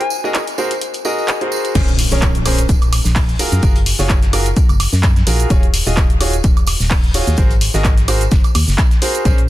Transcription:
0.01 soft synth lead G#5, closed hi-hat
0.10 tambourine
0.24 grand piano F#4 G#4 A#4 D#5, tambourine
0.34 clap, closed hi-hat, tambourine
0.47 closed hi-hat, tambourine
0.58 grand piano F#4 G#4 A#4 C5, tambourine
0.71 closed hi-hat, tambourine
0.81 closed hi-hat, tambourine
0.94 closed hi-hat, tambourine
1.05 grand piano F#4 G#4 A#4 D#5, tambourine
1.18 tambourine
1.28 clap, closed hi-hat, tambourine
1.41 grand piano F#4 G#4 A#4 C5, closed hi-hat
1.52 tambourine
1.65 closed hi-hat, tambourine
1.75 fm bass A#1, grand piano C#4 G#4 A#4 C5, kick, closed hi-hat, crash, tambourine, impact, shaker
1.88 closed hi-hat, shaker
1.99 open hi-hat, tambourine
2.12 fm bass A#1, grand piano C#4 G#4 A#4 C#5, tambourine, shaker
2.22 kick, snare, clap, closed hi-hat, tambourine, shaker
2.35 closed hi-hat, shaker
2.45 grand piano C#4 G#4 A#4 C5, open hi-hat, tambourine, high woodblock
2.58 closed hi-hat, tambourine, shaker
2.69 fm bass A#1, kick, closed hi-hat, tambourine, shaker
2.82 closed hi-hat, tambourine, high woodblock, shaker
2.93 open hi-hat, tambourine, high woodblock
3.04 fm bass A#1, snare, tambourine, shaker
3.16 kick, snare, clap, closed hi-hat, open hi-hat, tambourine, shaker
3.29 closed hi-hat, shaker
3.39 grand piano F4 F#4 G#4 A#4, open hi-hat, tambourine
3.52 fm bass F#2, closed hi-hat, tambourine, shaker
3.62 fm bass F#1, grand piano F4 F#4 G#4 A#4, kick, closed hi-hat, tambourine, shaker
3.76 closed hi-hat, shaker
3.86 open hi-hat, tambourine
3.99 fm bass F#1, grand piano F4 F#4 G#4 C#5, snare, tambourine, shaker
4.09 kick, snare, clap, closed hi-hat, tambourine, shaker
4.22 snare, closed hi-hat, shaker
4.33 grand piano F4 F#4 G#4 A#4, open hi-hat, tambourine, high woodblock
4.46 closed hi-hat, tambourine, shaker
4.57 kick, closed hi-hat, tambourine, shaker
4.69 fm bass F#1, closed hi-hat, tambourine, high woodblock, shaker
4.80 open hi-hat, tambourine, high woodblock
4.92 fm bass F#2, snare, tambourine, shaker
5.03 kick, snare, clap, closed hi-hat, tambourine, shaker
5.16 snare, closed hi-hat, shaker
5.27 fm bass A#1, grand piano F4 F#4 G#4 A#4, open hi-hat, tambourine
5.40 closed hi-hat, tambourine, shaker
5.50 fm bass D#1, grand piano F4 F#4 G#4 C#5, kick, closed hi-hat, tambourine, shaker
5.63 closed hi-hat, shaker
5.74 open hi-hat, tambourine
5.86 fm bass D#1, grand piano F4 F#4 G#4 D#5, tambourine, shaker
5.97 kick, snare, clap, closed hi-hat, tambourine, shaker
6.10 closed hi-hat, shaker
6.21 grand piano F4 F#4 G#4 C#5, open hi-hat, tambourine, high woodblock
6.33 closed hi-hat, tambourine, shaker
6.44 fm bass D#1, kick, closed hi-hat, tambourine, shaker
6.57 closed hi-hat, tambourine, high woodblock, shaker
6.67 open hi-hat, tambourine, high woodblock
6.80 fm bass D#1, snare, tambourine, shaker
6.90 kick, snare, clap, closed hi-hat, open hi-hat, tambourine, shaker
7.04 closed hi-hat, shaker
7.14 grand piano F4 F#4 G#4 C#5, open hi-hat, tambourine
7.27 fm bass D#2, closed hi-hat, tambourine, shaker
7.37 fm bass G#1, grand piano F#4 G#4 A#4 C5, kick, closed hi-hat, tambourine, shaker
7.51 closed hi-hat, tambourine, shaker
7.61 open hi-hat, tambourine
7.74 fm bass G#1, grand piano F#4 G#4 A#4 D#5, snare, tambourine, shaker
7.84 kick, snare, clap, closed hi-hat, tambourine, shaker
7.97 snare, closed hi-hat, shaker
8.08 grand piano F#4 G#4 A#4 C5, open hi-hat, tambourine, high woodblock
8.21 closed hi-hat, tambourine, shaker
8.31 fm bass F#1, kick, snare, closed hi-hat, tambourine, shaker
8.44 closed hi-hat, tambourine, high woodblock, shaker
8.54 fm bass D#2, open hi-hat, tambourine, high woodblock, shaker
8.68 fm bass F#1, snare, tambourine, shaker
8.78 kick, snare, clap, closed hi-hat, tambourine, shaker
8.91 snare, closed hi-hat, shaker
9.02 grand piano F#4 G#4 A#4 C5, open hi-hat, tambourine
9.15 closed hi-hat, tambourine, shaker
9.25 fm bass A#1, grand piano C#4 G#4 A#4 C5, kick, closed hi-hat, tambourine, shaker
9.38 closed hi-hat, shaker

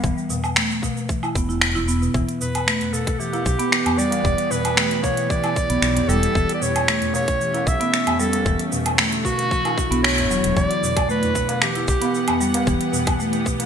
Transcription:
0.04 fretless electric bass E1, marimba E3, kick, cabasa
0.18 cabasa
0.29 marimba B2, tabla tin, tabla ge, cabasa
0.44 cabasa, low woodblock
0.56 marimba A3, finger snap, cabasa
0.71 cabasa
0.82 marimba B2, kick, tabla na, cabasa
0.97 tabla na, tabla tin, cabasa
1.09 marimba E3, kick, cabasa
1.23 marimba E4, cabasa, low woodblock
1.35 fretless electric bass E1, marimba B3, kick, cabasa
1.49 marimba E4, cabasa
1.61 finger snap, cabasa
1.75 marimba E4, tabla ge, cabasa
1.88 marimba B3, cabasa
2.02 marimba B2, cabasa
2.14 fretless electric bass E1, synth drone E3 B3 G4 F#5, marimba E3, kick, cabasa
2.29 closed hi-hat, cabasa
2.41 marimba B2, clarinet B4, tabla ge, cabasa
2.55 closed hi-hat, cabasa, low woodblock
2.67 marimba A3, finger snap, cabasa
2.81 closed hi-hat, tabla ge, cabasa
2.93 marimba B2, clarinet A4, tabla na, cabasa
3.07 kick, closed hi-hat, tabla na, cabasa
3.12 clarinet A4
3.19 marimba E3, clarinet G4, cabasa
3.33 marimba E4, closed hi-hat, tabla na, cabasa
3.46 fretless electric bass B1, kick, cabasa
3.59 marimba B3, closed hi-hat, tabla tin, cabasa
3.72 finger snap, cabasa
3.86 marimba B3, closed hi-hat, tabla ge, cabasa, low woodblock
3.98 marimba G3, clarinet D5, tabla tin, cabasa
4.11 marimba G3, closed hi-hat, tabla na, cabasa
4.24 fretless electric bass E1, marimba E3, synth drone E4, kick, cabasa
4.38 closed hi-hat, cabasa
4.51 marimba B2, clarinet B4, tabla tin, tabla ge, cabasa
4.65 closed hi-hat, cabasa, low woodblock
4.77 marimba A3, finger snap, cabasa
4.91 closed hi-hat, cabasa
5.03 marimba B2, clarinet C#5, kick, tabla na, cabasa
5.17 closed hi-hat, tabla tin, cabasa
5.30 marimba E3, clarinet D5, kick, cabasa
5.44 marimba E4, closed hi-hat, cabasa, low woodblock
5.56 kick, cabasa
5.70 fretless electric bass B1, marimba B3, closed hi-hat, cabasa
5.82 fretless electric bass B1, finger snap, cabasa
5.97 marimba B3, closed hi-hat, tabla ge, cabasa
6.09 fretless electric bass E1, marimba G3, clarinet A4, cabasa
6.23 marimba G3, closed hi-hat, cabasa
6.35 fretless electric bass E1, marimba E3, synth drone A3 C#4, kick, cabasa
6.49 closed hi-hat, cabasa
6.54 clarinet D5
6.61 marimba B2, clarinet C#5, tabla ge, cabasa
6.76 closed hi-hat, cabasa, low woodblock
6.88 marimba A3, finger snap, cabasa
7.02 closed hi-hat, tabla ge, cabasa
7.14 marimba B2, clarinet C#5, tabla na, cabasa
7.27 kick, closed hi-hat, tabla na, cabasa
7.40 marimba E3, cabasa
7.54 marimba E4, closed hi-hat, tabla na, cabasa
7.67 fretless electric bass B1, clarinet E5, kick, cabasa
7.80 marimba B3, closed hi-hat, tabla tin, cabasa
7.94 finger snap, cabasa
8.07 marimba B3, closed hi-hat, tabla ge, cabasa, low woodblock
8.19 marimba G3, clarinet A4, tabla tin, cabasa
8.33 marimba G3, closed hi-hat, tabla na, cabasa
8.45 fretless electric bass E1, synth drone D3 A3 E4 F#4, marimba E3, kick, cabasa
8.59 closed hi-hat, cabasa
8.72 marimba B2, tabla tin, tabla ge, cabasa
8.86 closed hi-hat, tabla na, cabasa, low woodblock
8.98 marimba A3, finger snap, cabasa
9.12 closed hi-hat, cabasa
9.25 marimba B2, clarinet F#4, kick, tabla na, cabasa
9.39 closed hi-hat, tabla na, tabla tin, cabasa
9.51 marimba E3, kick, cabasa
9.65 marimba E4, closed hi-hat, tabla na, cabasa, low woodblock
9.78 kick, cabasa
9.91 fretless electric bass B1, marimba B3, closed hi-hat, cabasa
10.03 clarinet C#5, finger snap, cabasa
10.17 marimba B3, closed hi-hat, tabla ge, cabasa
10.30 fretless electric bass E1, marimba F#3, cabasa
10.44 fretless electric bass E1, marimba F#3, closed hi-hat, cabasa
10.57 fretless electric bass E1, marimba E3, synth drone E3 B3 G4 F#5, clarinet D5, kick, cabasa
10.71 closed hi-hat, cabasa
10.82 marimba B2, tabla ge, cabasa
10.97 kick, closed hi-hat, cabasa, low woodblock
11.09 marimba A3, clarinet B4, tabla tin, cabasa
11.23 closed hi-hat, tabla ge, cabasa
11.34 marimba B2, kick, tabla tin, cabasa
11.49 closed hi-hat, tabla na, cabasa
11.62 marimba E3, clarinet G4, finger snap, cabasa
11.75 marimba E4, closed hi-hat, cabasa
11.88 fretless electric bass B1, clarinet G4, kick, cabasa
12.01 marimba B3, closed hi-hat, tabla na, tabla tin, cabasa
12.15 cabasa
12.28 marimba B3, closed hi-hat, tabla ge, cabasa, low woodblock
12.41 marimba G3, cabasa
12.54 marimba G3, closed hi-hat, tabla na, cabasa
12.67 fretless electric bass E1, marimba E3, kick, cabasa
12.81 closed hi-hat, cabasa
12.93 marimba B2, tabla ge, cabasa
13.07 kick, closed hi-hat, cabasa, low woodblock
13.20 marimba A3, tabla tin, cabasa
13.33 closed hi-hat, cabasa
13.46 marimba B2, kick, tabla tin, cabasa
13.60 closed hi-hat, tabla na, cabasa

